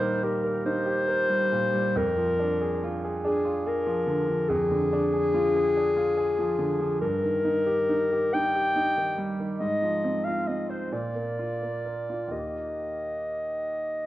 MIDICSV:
0, 0, Header, 1, 3, 480
1, 0, Start_track
1, 0, Key_signature, -3, "major"
1, 0, Tempo, 864553
1, 1084, Time_signature, 12, 3, 24, 8
1, 1562, Tempo, 839161
1, 3962, Tempo, 879765
1, 4922, Tempo, 852273
1, 5882, Tempo, 891530
1, 6362, Tempo, 952381
1, 7722, End_track
2, 0, Start_track
2, 0, Title_t, "Clarinet"
2, 0, Program_c, 0, 71
2, 0, Note_on_c, 0, 72, 95
2, 130, Note_on_c, 0, 70, 74
2, 139, Note_off_c, 0, 72, 0
2, 360, Note_off_c, 0, 70, 0
2, 363, Note_on_c, 0, 72, 101
2, 1096, Note_on_c, 0, 70, 98
2, 1104, Note_off_c, 0, 72, 0
2, 1653, Note_off_c, 0, 70, 0
2, 1809, Note_on_c, 0, 68, 88
2, 2055, Note_on_c, 0, 70, 92
2, 2064, Note_off_c, 0, 68, 0
2, 2521, Note_on_c, 0, 68, 110
2, 2530, Note_off_c, 0, 70, 0
2, 3959, Note_off_c, 0, 68, 0
2, 3962, Note_on_c, 0, 70, 100
2, 4688, Note_on_c, 0, 79, 100
2, 4696, Note_off_c, 0, 70, 0
2, 5238, Note_off_c, 0, 79, 0
2, 5386, Note_on_c, 0, 75, 90
2, 5755, Note_on_c, 0, 77, 73
2, 5764, Note_off_c, 0, 75, 0
2, 5883, Note_on_c, 0, 75, 65
2, 5891, Note_off_c, 0, 77, 0
2, 6004, Note_on_c, 0, 72, 61
2, 6013, Note_off_c, 0, 75, 0
2, 6126, Note_on_c, 0, 74, 73
2, 6134, Note_off_c, 0, 72, 0
2, 6840, Note_on_c, 0, 75, 66
2, 6848, Note_off_c, 0, 74, 0
2, 7722, Note_off_c, 0, 75, 0
2, 7722, End_track
3, 0, Start_track
3, 0, Title_t, "Grand piano"
3, 0, Program_c, 1, 0
3, 0, Control_c, 1, 64, 127
3, 0, Note_on_c, 1, 46, 50
3, 0, Note_on_c, 1, 55, 49
3, 0, Note_on_c, 1, 63, 66
3, 0, Note_on_c, 1, 67, 59
3, 0, Note_on_c, 1, 70, 55
3, 2, Note_off_c, 1, 70, 0
3, 2, Note_on_c, 1, 70, 60
3, 77, Note_off_c, 1, 63, 0
3, 129, Note_off_c, 1, 67, 0
3, 129, Note_on_c, 1, 67, 52
3, 193, Note_off_c, 1, 70, 0
3, 243, Note_on_c, 1, 70, 57
3, 315, Note_off_c, 1, 67, 0
3, 364, Note_on_c, 1, 63, 57
3, 432, Note_off_c, 1, 70, 0
3, 477, Note_on_c, 1, 67, 57
3, 553, Note_off_c, 1, 63, 0
3, 600, Note_on_c, 1, 70, 62
3, 671, Note_off_c, 1, 67, 0
3, 720, Note_off_c, 1, 55, 0
3, 720, Note_on_c, 1, 55, 53
3, 793, Note_off_c, 1, 70, 0
3, 844, Note_off_c, 1, 46, 0
3, 844, Note_on_c, 1, 46, 50
3, 914, Note_off_c, 1, 55, 0
3, 964, Note_on_c, 1, 55, 60
3, 1037, Note_off_c, 1, 46, 0
3, 1085, Note_off_c, 1, 55, 0
3, 1087, Note_on_c, 1, 41, 68
3, 1094, Control_c, 1, 64, 0
3, 1181, Control_c, 1, 64, 127
3, 1208, Note_on_c, 1, 53, 56
3, 1330, Note_on_c, 1, 62, 58
3, 1399, Note_off_c, 1, 53, 0
3, 1452, Note_on_c, 1, 68, 55
3, 1517, Note_off_c, 1, 62, 0
3, 1574, Note_on_c, 1, 65, 61
3, 1637, Note_off_c, 1, 68, 0
3, 1694, Note_on_c, 1, 68, 63
3, 1760, Note_off_c, 1, 65, 0
3, 1807, Note_on_c, 1, 62, 58
3, 1879, Note_off_c, 1, 68, 0
3, 1925, Note_on_c, 1, 65, 55
3, 1996, Note_off_c, 1, 62, 0
3, 2047, Note_on_c, 1, 68, 60
3, 2116, Note_off_c, 1, 65, 0
3, 2164, Note_on_c, 1, 53, 62
3, 2236, Note_off_c, 1, 68, 0
3, 2280, Note_on_c, 1, 50, 60
3, 2354, Note_off_c, 1, 53, 0
3, 2405, Note_on_c, 1, 53, 57
3, 2471, Note_off_c, 1, 50, 0
3, 2498, Note_off_c, 1, 41, 0
3, 2526, Note_on_c, 1, 41, 64
3, 2593, Note_off_c, 1, 53, 0
3, 2649, Note_on_c, 1, 50, 57
3, 2772, Note_on_c, 1, 62, 63
3, 2839, Note_off_c, 1, 50, 0
3, 2887, Note_on_c, 1, 68, 57
3, 2961, Note_off_c, 1, 62, 0
3, 3008, Note_on_c, 1, 65, 62
3, 3079, Note_off_c, 1, 68, 0
3, 3131, Note_on_c, 1, 68, 58
3, 3199, Note_off_c, 1, 65, 0
3, 3250, Note_on_c, 1, 62, 58
3, 3318, Note_off_c, 1, 68, 0
3, 3364, Note_on_c, 1, 65, 60
3, 3437, Note_off_c, 1, 62, 0
3, 3482, Note_on_c, 1, 68, 64
3, 3552, Note_off_c, 1, 65, 0
3, 3605, Note_on_c, 1, 53, 60
3, 3671, Note_off_c, 1, 68, 0
3, 3720, Note_on_c, 1, 50, 55
3, 3793, Note_off_c, 1, 53, 0
3, 3841, Note_on_c, 1, 53, 58
3, 3913, Note_off_c, 1, 50, 0
3, 3942, Note_off_c, 1, 41, 0
3, 3962, Note_off_c, 1, 53, 0
3, 3965, Note_on_c, 1, 43, 62
3, 3972, Control_c, 1, 64, 0
3, 4066, Control_c, 1, 64, 127
3, 4088, Note_on_c, 1, 51, 53
3, 4199, Note_on_c, 1, 63, 56
3, 4278, Note_off_c, 1, 51, 0
3, 4319, Note_on_c, 1, 67, 51
3, 4397, Note_off_c, 1, 63, 0
3, 4445, Note_on_c, 1, 63, 55
3, 4519, Note_off_c, 1, 67, 0
3, 4570, Note_on_c, 1, 67, 57
3, 4641, Note_off_c, 1, 63, 0
3, 4690, Note_on_c, 1, 63, 58
3, 4760, Note_off_c, 1, 67, 0
3, 4808, Note_on_c, 1, 67, 52
3, 4876, Note_off_c, 1, 63, 0
3, 4917, Note_on_c, 1, 63, 58
3, 4992, Note_off_c, 1, 67, 0
3, 5039, Note_on_c, 1, 51, 49
3, 5107, Note_off_c, 1, 63, 0
3, 5155, Note_on_c, 1, 55, 56
3, 5226, Note_off_c, 1, 51, 0
3, 5276, Note_on_c, 1, 51, 46
3, 5345, Note_off_c, 1, 55, 0
3, 5372, Note_off_c, 1, 43, 0
3, 5394, Note_off_c, 1, 51, 0
3, 5394, Note_on_c, 1, 44, 59
3, 5403, Control_c, 1, 64, 0
3, 5509, Control_c, 1, 64, 127
3, 5517, Note_on_c, 1, 53, 45
3, 5640, Note_on_c, 1, 60, 53
3, 5711, Note_off_c, 1, 53, 0
3, 5772, Note_on_c, 1, 65, 48
3, 5834, Note_off_c, 1, 60, 0
3, 5885, Note_on_c, 1, 60, 43
3, 5958, Note_off_c, 1, 65, 0
3, 6007, Note_on_c, 1, 72, 49
3, 6072, Note_off_c, 1, 60, 0
3, 6097, Note_off_c, 1, 44, 0
3, 6121, Note_off_c, 1, 72, 0
3, 6124, Note_on_c, 1, 46, 53
3, 6127, Control_c, 1, 64, 0
3, 6218, Control_c, 1, 64, 127
3, 6248, Note_on_c, 1, 58, 44
3, 6375, Note_on_c, 1, 65, 44
3, 6435, Note_off_c, 1, 58, 0
3, 6491, Note_on_c, 1, 58, 42
3, 6556, Note_off_c, 1, 65, 0
3, 6608, Note_on_c, 1, 70, 41
3, 6675, Note_off_c, 1, 58, 0
3, 6731, Note_on_c, 1, 65, 39
3, 6795, Note_off_c, 1, 70, 0
3, 6821, Note_off_c, 1, 46, 0
3, 6822, Note_on_c, 1, 39, 41
3, 6829, Note_on_c, 1, 51, 30
3, 6835, Note_on_c, 1, 58, 32
3, 6841, Note_on_c, 1, 67, 30
3, 6845, Note_off_c, 1, 65, 0
3, 6849, Control_c, 1, 64, 0
3, 6951, Control_c, 1, 64, 127
3, 7722, Note_off_c, 1, 39, 0
3, 7722, Note_off_c, 1, 51, 0
3, 7722, Note_off_c, 1, 58, 0
3, 7722, Note_off_c, 1, 67, 0
3, 7722, End_track
0, 0, End_of_file